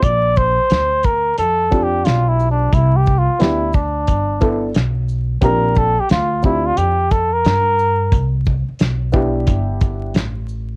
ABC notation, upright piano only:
X:1
M:4/4
L:1/8
Q:"Swing 16ths" 1/4=89
K:C
V:1 name="Upright piano"
z4 z [CDFG]3 | z2 [B,DEG] z2 [B,DEA] z2 | [CDFG] z2 [CDFG] z4 | z3 [B,DEG]3 z2 |]